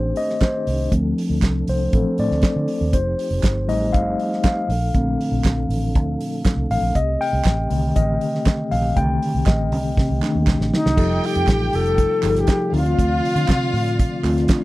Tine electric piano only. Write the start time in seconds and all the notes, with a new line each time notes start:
Already playing: D#3 A3 D4 C5
0.17 D#5
0.44 C5
0.92 F3 A3 C4
1.69 C5
1.93 F3 A3 C4 A4
2.20 D5
2.94 C5
3.68 G3 A3 D#4 D#5
3.93 F5
4.44 F5
4.94 D3 A3 C4
6.71 F5
6.96 D#5
7.21 G5
7.70 D3 D#3 A3
7.96 D#5
8.72 F5
8.96 D3 D#3 A3 G5
9.46 D#5
10.21 D#3 A3 D4
10.96 F3 D#4 G4 A4
12.22 F3 D#4 G4 G#4
12.30 A4
12.72 D3 A3 C4 D#4
12.80 F4
14.23 D3 A3 C4 F4